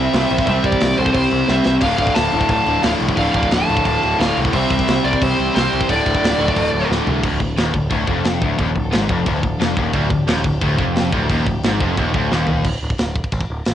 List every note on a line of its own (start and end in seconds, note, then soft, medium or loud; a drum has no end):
0.00 0.12 C3 medium
0.00 1.80 E3 medium
0.00 0.13 G3 medium
0.00 0.12 C4 medium
0.00 1.80 C4 medium
0.00 1.80 G4 medium
0.00 0.45 C5 medium
0.00 0.45 E5 loud
0.13 0.24 C2 loud
0.13 0.45 C3 medium
0.13 0.47 G3 medium
0.13 snare loud
0.13 crash medium
0.18 0.48 C4 medium
0.30 0.41 A#1 loud
0.30 crash medium
0.39 kick loud
0.46 0.58 C2 loud
0.46 1.30 C3 loud
0.46 1.31 G3 medium
0.46 1.29 C4 loud
0.46 0.66 C5 loud
0.46 0.66 E5 loud
0.46 kick loud
0.46 crash medium
0.64 0.75 C2 medium
0.64 0.99 G4 medium
0.64 1.00 D5 medium
0.64 kick loud
0.64 crash medium
0.72 kick medium
0.80 0.92 C2 medium
0.80 snare loud
0.80 crash loud
0.97 1.09 C2 loud
0.97 1.49 G3 medium
0.97 1.47 C4 medium
0.97 1.15 A4 medium
0.97 1.13 C5 medium
0.97 crash medium
1.01 1.47 C3 medium
1.06 kick medium
1.14 1.25 C2 loud
1.14 1.47 G4 medium
1.14 1.49 C5 medium
1.14 kick loud
1.14 crash loud
1.30 1.43 C2 loud
1.30 1.46 C3 medium
1.30 1.48 G3 medium
1.30 1.47 C4 medium
1.30 crash medium
1.48 1.59 C2 loud
1.48 1.81 C3 medium
1.48 1.82 G3 medium
1.48 1.83 C4 loud
1.48 1.73 C5 medium
1.48 1.73 E5 medium
1.48 snare medium
1.65 1.76 C2 medium
1.65 snare loud
1.81 1.92 D1 loud
1.81 2.66 D2 loud
1.81 2.66 A2 medium
1.81 4.51 F3 medium
1.81 4.50 D4 medium
1.81 4.51 A4 medium
1.81 1.99 D5 loud
1.81 1.97 F5 loud
1.81 kick loud
1.81 splash medium
1.81 crash loud
1.85 2.65 D3 loud
1.98 2.09 D1 medium
1.98 2.14 F5 medium
1.98 kick medium
1.98 crash medium
2.02 2.17 D5 loud
2.07 kick loud
2.14 2.27 D1 loud
2.14 2.49 F5 medium
2.14 2.47 A5 loud
2.14 snare loud
2.14 crash loud
2.32 2.44 D1 loud
2.32 2.81 D2 medium
2.32 2.83 A2 medium
2.32 2.83 D3 medium
2.32 crash medium
2.41 kick medium
2.49 2.60 D1 loud
2.49 2.83 F5 loud
2.49 2.84 A5 loud
2.49 kick loud
2.49 crash loud
2.66 2.77 D1 medium
2.66 2.82 D2 medium
2.66 2.83 A2 medium
2.66 2.82 D3 medium
2.66 crash medium
2.83 2.94 D1 loud
2.83 3.16 D2 medium
2.83 3.17 A2 medium
2.83 3.18 D3 loud
2.83 2.89 D5 medium
2.83 2.88 F5 loud
2.83 snare loud
2.83 crash medium
3.00 3.11 C2 medium
3.00 crash medium
3.09 kick medium
3.17 3.28 D1 loud
3.17 4.01 D2 medium
3.17 4.02 A2 medium
3.17 4.01 D3 medium
3.17 3.34 D5 medium
3.17 3.32 F5 medium
3.17 kick loud
3.17 crash medium
3.33 3.45 D1 medium
3.33 3.51 D5 medium
3.33 3.51 F5 loud
3.33 kick loud
3.33 crash medium
3.43 kick medium
3.51 3.62 D1 loud
3.51 3.85 F5 loud
3.51 3.84 A5 loud
3.51 snare loud
3.51 crash loud
3.67 3.79 D1 medium
3.67 4.18 D2 medium
3.67 4.19 A2 medium
3.67 4.18 D3 medium
3.67 crash medium
3.77 kick loud
3.85 3.96 D1 loud
3.85 4.17 F5 loud
3.85 4.17 A5 loud
3.85 kick medium
3.85 crash medium
4.02 4.13 D1 medium
4.02 4.17 D2 medium
4.02 4.19 A2 medium
4.02 4.18 D3 medium
4.02 crash medium
4.18 4.30 D1 loud
4.18 4.52 D2 medium
4.18 4.53 A2 medium
4.18 4.54 D3 medium
4.18 4.36 D5 medium
4.18 4.35 F5 loud
4.18 snare loud
4.18 crash loud
4.37 4.48 C2 loud
4.37 crash medium
4.45 kick medium
4.53 4.64 C2 loud
4.53 5.37 C3 medium
4.53 5.87 E3 medium
4.53 5.37 G3 loud
4.53 5.88 C4 medium
4.53 5.36 C4 medium
4.53 5.87 G4 medium
4.53 4.69 C5 medium
4.53 4.70 E5 loud
4.53 kick loud
4.53 crash loud
4.70 4.81 C2 medium
4.70 5.02 C5 medium
4.70 5.05 E5 medium
4.70 kick loud
4.70 crash medium
4.79 kick loud
4.88 4.98 C2 loud
4.88 snare loud
4.88 crash loud
5.04 5.14 C2 loud
5.04 5.53 C3 medium
5.04 5.54 G3 medium
5.04 5.54 C4 medium
5.04 5.23 A#4 medium
5.04 5.23 D5 medium
5.04 crash medium
5.13 kick medium
5.22 5.32 C2 loud
5.22 5.56 G4 medium
5.22 5.54 C5 loud
5.22 kick loud
5.22 crash loud
5.38 5.49 C2 medium
5.38 5.53 C3 medium
5.38 5.55 G3 medium
5.38 5.54 C4 medium
5.38 crash medium
5.55 5.66 C2 loud
5.55 5.87 C3 medium
5.55 5.88 G3 medium
5.55 5.89 C4 medium
5.55 5.87 G4 medium
5.55 5.87 C5 medium
5.55 snare loud
5.55 crash medium
5.73 5.83 C2 medium
5.73 crash medium
5.81 kick medium
5.88 6.00 D1 loud
5.88 6.72 D2 medium
5.88 6.73 A2 medium
5.88 6.72 D3 loud
5.88 7.23 F3 medium
5.88 7.22 D4 medium
5.88 7.23 A4 medium
5.88 6.87 A4 medium
5.88 6.87 D5 medium
5.88 kick loud
5.88 crash loud
6.06 6.17 D1 medium
6.06 kick medium
6.06 crash medium
6.15 kick loud
6.22 6.33 D1 loud
6.22 snare loud
6.22 crash loud
6.38 6.49 D1 loud
6.38 6.90 A2 medium
6.38 6.89 D3 medium
6.38 crash medium
6.42 6.88 D2 medium
6.48 kick medium
6.56 6.67 D1 loud
6.56 kick loud
6.56 crash loud
6.73 6.83 D1 medium
6.73 6.90 A2 medium
6.73 6.89 D3 medium
6.73 crash medium
6.77 6.88 D2 medium
6.90 7.00 D1 loud
6.90 7.23 D2 medium
6.90 7.24 A2 medium
6.90 7.24 D3 medium
6.90 snare medium
7.06 7.17 C2 medium
7.06 floor tom loud
7.23 7.39 D1 loud
7.23 7.40 D2 loud
7.23 12.63 F3 medium
7.23 12.62 D4 medium
7.23 9.93 A4 medium
7.23 kick loud
7.23 crash loud
7.23 crash medium
7.40 7.56 D1 medium
7.40 7.55 D2 medium
7.40 kick medium
7.57 7.73 D#1 medium
7.57 7.75 D#2 loud
7.57 snare loud
7.57 crash medium
7.74 7.90 D1 medium
7.74 7.89 D2 medium
7.74 kick medium
7.90 8.07 D1 loud
7.90 8.08 D2 loud
7.90 kick loud
7.90 crash medium
8.08 8.39 F1 medium
8.08 8.42 F2 loud
8.08 kick loud
8.24 snare loud
8.24 crash medium
8.41 8.58 D1 loud
8.41 8.59 D2 loud
8.41 kick loud
8.59 8.75 D#1 loud
8.59 8.76 D#2 loud
8.59 kick loud
8.59 crash medium
8.76 8.92 D1 medium
8.76 8.90 D2 medium
8.76 kick loud
8.92 9.09 G#1 loud
8.92 9.09 G#2 medium
8.92 snare loud
8.92 crash medium
9.09 9.25 F1 loud
9.09 9.25 F2 loud
9.09 kick loud
9.26 9.42 D1 loud
9.26 9.42 D2 loud
9.26 kick loud
9.26 crash medium
9.43 9.59 D1 medium
9.43 9.57 D2 medium
9.43 kick medium
9.60 9.76 F1 loud
9.60 9.77 F2 loud
9.60 snare loud
9.60 crash medium
9.77 9.93 D#1 loud
9.77 9.93 D#2 loud
9.77 kick loud
9.93 10.10 D1 medium
9.93 10.10 D2 loud
9.93 12.63 G4 medium
9.93 kick loud
9.93 crash medium
10.10 10.26 D1 medium
10.10 10.25 D2 medium
10.10 kick loud
10.27 10.43 D#1 loud
10.27 10.44 D#2 loud
10.27 snare loud
10.27 crash medium
10.44 10.61 D1 loud
10.44 10.59 D2 medium
10.44 kick loud
10.61 10.78 D1 loud
10.61 10.78 D2 loud
10.61 kick loud
10.61 crash medium
10.78 11.11 F1 loud
10.78 11.12 F2 loud
10.78 kick loud
10.96 snare loud
10.96 crash medium
11.12 11.29 D1 medium
11.12 11.29 D2 loud
11.12 kick loud
11.30 11.46 D#1 medium
11.30 11.46 D#2 loud
11.30 kick loud
11.30 crash medium
11.46 11.63 D1 medium
11.46 11.61 D2 medium
11.46 kick medium
11.63 11.79 G#1 medium
11.63 11.80 G#2 loud
11.63 snare loud
11.63 crash medium
11.80 11.96 F1 loud
11.80 11.97 F2 loud
11.80 kick loud
11.97 12.13 D#1 loud
11.97 12.13 D#2 medium
11.97 kick loud
11.97 crash medium
12.13 12.30 D1 loud
12.13 12.31 D2 medium
12.13 kick loud
12.31 12.63 D#1 loud
12.31 12.65 D#2 medium
12.31 snare medium
12.47 floor tom loud
12.65 12.76 D1 loud
12.65 kick loud
12.65 crash loud
12.65 china medium
12.83 12.93 D1 medium
12.90 kick loud
12.98 13.20 D1 loud
12.98 snare loud
12.98 china medium
13.16 kick loud
13.24 kick medium
13.32 13.44 A1 loud
13.32 kick loud
13.32 china medium
13.41 kick medium
13.50 13.61 D1 medium
13.65 13.74 A1 medium
13.65 snare loud
13.65 china medium